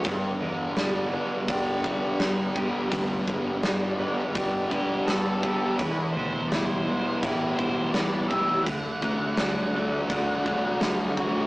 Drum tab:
HH |o-o-o-o-|o-o-o-o-|o-o-o-o-|o-o-o-o-|
SD |--o---o-|--o---o-|--o---o-|--o---o-|
BD |o---oo-o|oo--oo-o|o---oo-o|oo--oo-o|